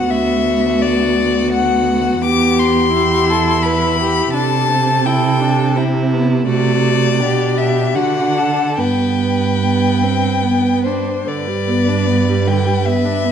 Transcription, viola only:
Already playing: B3
2.23 B3
2.94 E4
4.34 D4
4.69 C4
5.06 E4
5.40 D4
5.76 C4
6.12 B3
6.47 A3
7.20 D4
7.95 D4
8.77 B3
9.61 B3
10.03 C4
10.43 B3
10.86 D4
11.27 D3
11.48 G3
11.67 B3
11.88 D4
12.07 B3
12.28 G3
12.47 D3
12.66 G3
12.86 B3
13.04 D4
13.25 B3

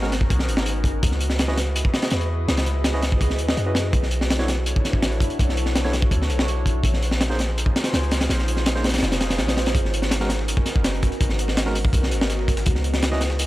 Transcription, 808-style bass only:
Already playing: G#1
0.30 B1
0.48 G#1
1.03 C#2
2.12 E2
2.48 C#2
3.39 D#2
3.57 F#2
3.93 B1
4.93 A1
5.39 B1
6.11 D2
6.30 B1
6.84 A#1
7.93 C#2
8.30 A#1
9.02 F1
9.39 A#1
9.75 G#1
10.76 F#1
11.21 G#1
11.93 B1
12.12 G#1
12.67 C#2

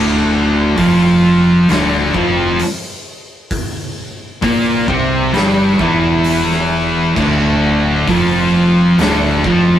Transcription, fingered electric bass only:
Already playing: D1
0.78 F1
1.69 D1
2.15 F1
4.42 A#1
4.88 C2
5.35 G1
5.79 E1
7.16 D1
8.07 F1
8.98 D1
9.45 F1

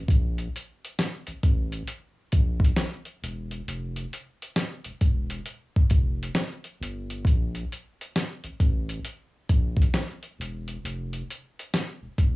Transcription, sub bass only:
0.09 A#1
1.27 A1
1.43 A1
2.33 A#1
3.23 E1
3.67 F1
4.85 E1
5.01 E1
5.91 F1
6.80 G1
7.25 A#1
8.43 A1
8.60 A1
9.50 A#1
10.39 E1
10.84 F1
12.02 E1
12.18 E1

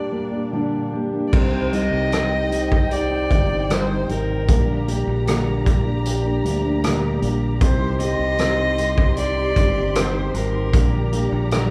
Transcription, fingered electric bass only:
1.33 C2
1.93 C2
3.31 G1
4.09 G#1
4.48 A#1
5.07 A#1
6.45 D2
7.22 A#1
7.61 C2
8.19 C2
9.56 G1
10.34 G#1
10.73 A#1
11.32 A#1

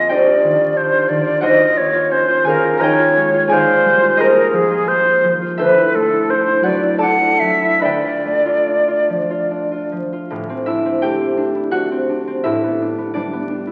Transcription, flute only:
Already playing: D#5
0.11 D5
0.77 C5
1.09 D5
1.44 D#5
1.78 C#5
2.12 C5
2.48 A#4
2.81 C#5
3.52 C5
4.21 A#4
4.56 G#4
4.88 C5
5.59 B4
5.95 A4
6.30 C5
6.64 D5
7.01 F#5
7.40 E5
7.82 D5

